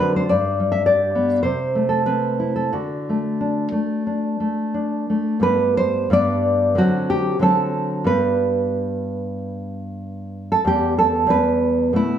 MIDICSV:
0, 0, Header, 1, 2, 480
1, 0, Start_track
1, 0, Key_signature, 1, "major"
1, 0, Tempo, 576369
1, 255, Time_signature, 4, 2, 24, 8
1, 1214, Tempo, 614754
1, 1694, Tempo, 670391
1, 5054, Tempo, 653595
1, 7454, Tempo, 635593
1, 9079, End_track
2, 0, Start_track
2, 0, Title_t, "Nylon-string guitar"
2, 0, Program_c, 0, 24
2, 0, Note_on_c, 0, 50, 71
2, 0, Note_on_c, 0, 54, 51
2, 0, Note_on_c, 0, 66, 58
2, 0, Note_on_c, 0, 71, 86
2, 3, Note_on_c, 0, 60, 53
2, 125, Note_off_c, 0, 71, 0
2, 135, Note_on_c, 0, 72, 79
2, 215, Note_off_c, 0, 50, 0
2, 244, Note_on_c, 0, 74, 93
2, 247, Note_off_c, 0, 54, 0
2, 247, Note_off_c, 0, 66, 0
2, 250, Note_off_c, 0, 60, 0
2, 253, Note_on_c, 0, 43, 65
2, 256, Note_off_c, 0, 72, 0
2, 496, Note_on_c, 0, 55, 49
2, 594, Note_off_c, 0, 74, 0
2, 598, Note_on_c, 0, 76, 83
2, 713, Note_off_c, 0, 76, 0
2, 717, Note_on_c, 0, 74, 89
2, 719, Note_on_c, 0, 67, 55
2, 960, Note_on_c, 0, 59, 54
2, 1184, Note_off_c, 0, 43, 0
2, 1185, Note_off_c, 0, 74, 0
2, 1189, Note_on_c, 0, 72, 84
2, 1199, Note_on_c, 0, 48, 62
2, 1207, Note_off_c, 0, 59, 0
2, 1207, Note_off_c, 0, 67, 0
2, 1215, Note_off_c, 0, 55, 0
2, 1444, Note_on_c, 0, 57, 47
2, 1543, Note_off_c, 0, 72, 0
2, 1551, Note_on_c, 0, 69, 76
2, 1682, Note_off_c, 0, 69, 0
2, 1685, Note_on_c, 0, 71, 74
2, 1688, Note_on_c, 0, 60, 43
2, 1925, Note_on_c, 0, 64, 44
2, 2029, Note_off_c, 0, 71, 0
2, 2041, Note_on_c, 0, 69, 70
2, 2136, Note_off_c, 0, 48, 0
2, 2161, Note_on_c, 0, 66, 64
2, 2164, Note_off_c, 0, 60, 0
2, 2167, Note_off_c, 0, 69, 0
2, 2167, Note_on_c, 0, 50, 50
2, 2168, Note_off_c, 0, 57, 0
2, 2169, Note_off_c, 0, 64, 0
2, 2425, Note_on_c, 0, 57, 37
2, 2649, Note_on_c, 0, 62, 42
2, 2865, Note_off_c, 0, 57, 0
2, 2871, Note_off_c, 0, 50, 0
2, 2874, Note_on_c, 0, 57, 48
2, 3114, Note_off_c, 0, 62, 0
2, 3123, Note_on_c, 0, 62, 42
2, 3353, Note_off_c, 0, 57, 0
2, 3362, Note_on_c, 0, 57, 42
2, 3569, Note_off_c, 0, 66, 0
2, 3597, Note_off_c, 0, 62, 0
2, 3606, Note_on_c, 0, 62, 41
2, 3852, Note_off_c, 0, 57, 0
2, 3860, Note_on_c, 0, 57, 40
2, 4074, Note_on_c, 0, 43, 67
2, 4081, Note_off_c, 0, 62, 0
2, 4084, Note_on_c, 0, 55, 50
2, 4093, Note_on_c, 0, 59, 57
2, 4097, Note_on_c, 0, 71, 100
2, 4099, Note_off_c, 0, 57, 0
2, 4330, Note_off_c, 0, 71, 0
2, 4343, Note_on_c, 0, 72, 100
2, 4560, Note_off_c, 0, 43, 0
2, 4565, Note_off_c, 0, 55, 0
2, 4570, Note_off_c, 0, 59, 0
2, 4576, Note_off_c, 0, 72, 0
2, 4578, Note_on_c, 0, 43, 69
2, 4588, Note_on_c, 0, 55, 55
2, 4597, Note_on_c, 0, 59, 57
2, 4600, Note_on_c, 0, 74, 107
2, 5038, Note_off_c, 0, 43, 0
2, 5043, Note_off_c, 0, 55, 0
2, 5043, Note_on_c, 0, 50, 67
2, 5045, Note_off_c, 0, 74, 0
2, 5048, Note_off_c, 0, 59, 0
2, 5057, Note_on_c, 0, 54, 49
2, 5061, Note_on_c, 0, 60, 51
2, 5067, Note_on_c, 0, 66, 104
2, 5289, Note_off_c, 0, 66, 0
2, 5299, Note_on_c, 0, 67, 99
2, 5506, Note_off_c, 0, 50, 0
2, 5515, Note_on_c, 0, 50, 63
2, 5517, Note_off_c, 0, 54, 0
2, 5519, Note_off_c, 0, 60, 0
2, 5524, Note_off_c, 0, 67, 0
2, 5529, Note_on_c, 0, 54, 49
2, 5534, Note_on_c, 0, 60, 55
2, 5539, Note_on_c, 0, 69, 97
2, 5985, Note_off_c, 0, 50, 0
2, 5992, Note_on_c, 0, 43, 64
2, 5993, Note_off_c, 0, 54, 0
2, 5993, Note_off_c, 0, 60, 0
2, 5993, Note_off_c, 0, 69, 0
2, 5996, Note_on_c, 0, 55, 50
2, 6006, Note_on_c, 0, 59, 52
2, 6010, Note_on_c, 0, 71, 103
2, 7790, Note_off_c, 0, 71, 0
2, 7820, Note_on_c, 0, 69, 95
2, 7902, Note_off_c, 0, 43, 0
2, 7903, Note_off_c, 0, 55, 0
2, 7909, Note_off_c, 0, 59, 0
2, 7917, Note_on_c, 0, 40, 62
2, 7929, Note_on_c, 0, 55, 49
2, 7934, Note_on_c, 0, 59, 48
2, 7935, Note_off_c, 0, 69, 0
2, 7938, Note_on_c, 0, 67, 94
2, 8166, Note_off_c, 0, 67, 0
2, 8173, Note_on_c, 0, 69, 88
2, 8377, Note_off_c, 0, 40, 0
2, 8386, Note_on_c, 0, 40, 63
2, 8389, Note_off_c, 0, 55, 0
2, 8398, Note_off_c, 0, 59, 0
2, 8398, Note_on_c, 0, 55, 52
2, 8405, Note_off_c, 0, 69, 0
2, 8407, Note_on_c, 0, 59, 53
2, 8412, Note_on_c, 0, 71, 98
2, 8870, Note_off_c, 0, 40, 0
2, 8876, Note_off_c, 0, 55, 0
2, 8878, Note_off_c, 0, 71, 0
2, 8881, Note_off_c, 0, 59, 0
2, 8885, Note_on_c, 0, 47, 58
2, 8892, Note_on_c, 0, 57, 50
2, 8907, Note_on_c, 0, 59, 50
2, 8910, Note_on_c, 0, 64, 94
2, 9079, Note_off_c, 0, 47, 0
2, 9079, Note_off_c, 0, 57, 0
2, 9079, Note_off_c, 0, 59, 0
2, 9079, Note_off_c, 0, 64, 0
2, 9079, End_track
0, 0, End_of_file